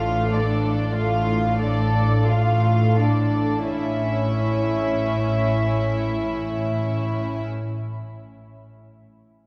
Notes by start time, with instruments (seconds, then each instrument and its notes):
Already playing: double bass section A1, cello section A2, viola section A3, violin section F4 F5
0.33 viola section D4, violin section A4 D5
0.95 double bass section A1, cello section A2, viola section A3, violin section F4 F5
1.61 viola section D4, violin section A4 D5
2.26 double bass section A1, cello section A2, viola section A3, violin section F4 F5
2.97 viola section D4, violin section A4 D5
3.68 double bass section A1, cello section A2, viola section C#4, violin section E4 E5